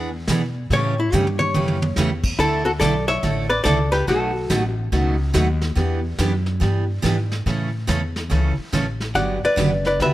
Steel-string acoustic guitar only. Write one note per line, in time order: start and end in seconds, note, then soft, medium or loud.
0.29 0.40 E3 medium
0.29 0.41 B3 medium
0.29 0.41 D4 medium
0.29 0.41 G#4 medium
0.72 0.93 C#3 medium
0.72 0.93 E3 medium
0.72 0.93 A3 medium
0.72 0.94 C#4 medium
0.72 0.94 G4 medium
1.13 1.24 C#3 medium
1.13 1.25 E3 medium
1.13 1.25 A3 medium
1.13 1.25 C#4 medium
1.13 1.25 G4 medium
1.55 1.77 C#3 medium
1.55 1.77 E3 medium
1.55 1.77 A3 medium
1.55 1.77 C#4 medium
1.55 1.77 G4 medium
1.98 2.09 C#3 medium
1.98 2.09 E3 medium
1.98 2.09 A3 medium
1.98 2.09 C#4 medium
1.98 2.10 G4 medium
2.40 2.62 D3 medium
2.40 2.62 A3 medium
2.40 2.62 D4 medium
2.40 2.62 E4 medium
2.40 2.62 A4 medium
2.81 2.93 D3 medium
2.81 2.93 A3 medium
2.81 2.94 D4 medium
2.81 2.93 E4 medium
2.81 2.93 A4 medium
3.23 3.45 D3 medium
3.23 3.45 A3 medium
3.23 3.46 D4 medium
3.23 3.46 E4 medium
3.23 3.46 A4 medium
3.65 3.77 D3 medium
3.65 3.77 A3 medium
3.65 3.77 D4 medium
3.65 3.78 E4 medium
3.65 3.78 A4 medium
4.07 4.30 B2 medium
4.07 4.30 F#3 medium
4.07 4.30 A3 medium
4.07 4.30 D#4 medium
4.07 4.31 F#4 medium
4.50 4.62 B2 medium
4.50 4.62 F#3 medium
4.50 4.62 A3 medium
4.50 4.62 D#4 medium
4.50 4.62 F#4 medium
4.92 5.14 B2 medium
4.92 5.15 F#3 medium
4.92 5.15 A3 medium
4.92 5.15 D#4 medium
4.92 5.15 F#4 medium
5.34 5.46 B2 medium
5.34 5.46 F#3 medium
5.34 5.46 A3 medium
5.34 5.46 D#4 medium
5.34 5.47 F#4 medium
5.75 5.98 E3 medium
5.75 5.99 B3 medium
5.75 5.99 D4 medium
5.75 5.99 G4 medium
6.19 6.31 E3 medium
6.19 6.31 B3 medium
6.19 6.31 D4 medium
6.19 6.31 G4 medium
6.60 6.83 E3 medium
6.60 6.83 B3 medium
6.60 6.83 D4 medium
6.60 6.84 G4 medium
7.02 7.15 E3 medium
7.02 7.15 B3 medium
7.02 7.15 D4 medium
7.02 7.15 G4 medium
7.46 7.68 C#3 medium
7.46 7.68 E3 medium
7.46 7.69 A3 medium
7.46 7.68 C#4 medium
7.46 7.69 A4 medium
7.87 8.00 C#3 medium
7.87 8.00 E3 medium
7.87 8.00 A3 medium
7.87 8.00 C#4 medium
7.87 8.00 A4 medium
8.30 8.52 C#3 medium
8.30 8.52 E3 medium
8.30 8.53 A3 medium
8.30 8.53 C#4 medium
8.30 8.53 A4 medium
8.72 8.84 C#3 medium
8.72 8.85 E3 medium
8.72 8.85 A3 medium
8.72 8.85 C#4 medium
8.72 8.85 A4 medium
9.15 9.37 D3 medium
9.15 9.37 F#3 medium
9.15 9.37 B3 medium
9.15 9.37 D4 medium
9.15 9.38 G4 medium
9.56 9.68 D3 medium
9.56 9.69 F#3 medium
9.56 9.69 B3 medium
9.56 9.69 D4 medium
9.56 9.69 G4 medium
10.01 10.14 D3 medium
10.01 10.14 F#3 medium
10.01 10.14 B3 medium
10.01 10.14 D4 medium
10.01 10.14 G4 medium